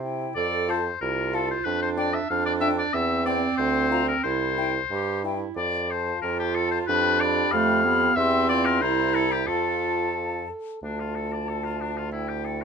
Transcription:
Already playing: bassoon C3
0.02 clarinet E4, flute G5
0.35 bassoon F2, clarinet A4, oboe D5
0.68 french horn F4, oboe C5, flute A5
1.01 bassoon C2, clarinet F4, oboe A#4
1.33 french horn F4, oboe A4, flute A5
1.51 oboe C5
1.64 bassoon F2, clarinet D4, oboe B4
1.82 oboe C5
1.97 french horn D4, oboe D5, flute G5
2.14 oboe E5
2.30 bassoon F2, clarinet D4, oboe F5
2.46 oboe D5
2.61 french horn D4, oboe E5, flute G5
2.78 oboe D5
2.94 bassoon E2, clarinet C4, oboe E5
3.25 french horn C4, oboe D5, flute G5
3.57 bassoon D2, oboe C5
3.91 french horn F4, flute A#5
4.08 oboe A#4
4.24 bassoon C2, clarinet E4, oboe C5
4.58 french horn E4, flute G5
4.91 bassoon G2, clarinet G4
5.24 french horn E4, clarinet E4, flute G5
5.56 bassoon F2, oboe D5
5.89 french horn F4, oboe C5, flute A5
6.22 bassoon F2, clarinet F4, oboe A#4
6.39 oboe G4
6.55 french horn F4, oboe A4, flute A5
6.71 oboe C5
6.87 bassoon F2, clarinet D4, french horn G4, oboe B4, flute B5
7.20 french horn G4, oboe D5, flute B5
7.52 bassoon F2, clarinet A3, oboe F5
7.85 clarinet B3, french horn G4, flute B5
8.16 bassoon E2, clarinet C4, french horn G4, oboe E5, flute C6
8.49 french horn F4, oboe D5
8.65 oboe A#4
8.81 bassoon C2, french horn E4, clarinet E4, oboe C5, flute A#5
9.15 oboe A4
9.32 oboe G4
9.47 bassoon F2, clarinet F4, french horn F4, oboe A4, flute A5
10.15 french horn F4
10.49 french horn A4
10.83 bassoon D2, french horn A3, oboe D4, clarinet F4, flute A5
10.99 oboe F4
11.16 oboe A4
11.32 oboe D5
11.49 oboe A4
11.64 oboe F4
11.80 oboe D4
11.97 oboe F4
12.12 oboe E4, clarinet E4, flute G5
12.28 oboe G4
12.45 oboe A4

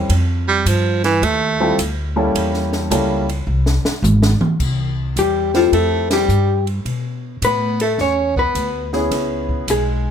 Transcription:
Already playing: upright piano E4 A4
0.09 upright bass F2, kick, ride
0.48 baritone saxophone G3
0.66 upright bass G2, baritone saxophone F3, kick, hi-hat pedal, ride
1.04 baritone saxophone E3, snare, ride
1.22 upright bass D#2, baritone saxophone A3, kick, ride
1.60 upright piano G3 C4 E4 F4 A4
1.78 upright bass D2, kick, hi-hat pedal, ride
2.16 upright piano G3 A#3 C#4 E4 A4
2.35 upright bass E2, kick, ride
2.54 snare
2.73 snare
2.90 upright bass C#2, upright piano G3 A#3 C#4 E4 A4, kick, hi-hat pedal, ride
3.29 ride
3.47 upright bass C2
3.66 snare
3.84 muted upright bass stroke, snare
4.02 upright bass G#1, hi-hat pedal, mid tom
4.22 snare
4.40 muted upright bass stroke, mid tom
4.60 upright bass C2, kick, crash
5.16 upright bass E2, baritone saxophone G3, hollow-body jazz guitar G4, kick, hi-hat pedal, ride
5.54 baritone saxophone F3, upright piano A3 C4 E4 G4, hollow-body jazz guitar F4, snare, ride
5.72 upright bass F2, baritone saxophone A3, hollow-body jazz guitar A4, kick, ride
6.10 baritone saxophone G3, hollow-body jazz guitar G4, snare, ride
6.28 upright bass G2, hi-hat pedal
6.67 ride
6.85 upright bass B2, kick, ride
7.42 upright bass A2, baritone saxophone B3, hollow-body jazz guitar B4, kick, hi-hat pedal, ride
7.80 baritone saxophone A3, hollow-body jazz guitar A4, ride
7.98 upright bass E2, baritone saxophone C#4, hollow-body jazz guitar C#5, kick, snare
8.36 baritone saxophone B3, hollow-body jazz guitar B4, kick
8.55 upright bass D2, kick, hi-hat pedal, ride
8.93 upright piano B3 C#4 E4 G#4, snare
9.11 upright bass C#2, kick, snare, ride
9.49 kick
9.67 upright bass B1, baritone saxophone G#3, hollow-body jazz guitar G#4, kick, hi-hat pedal, ride

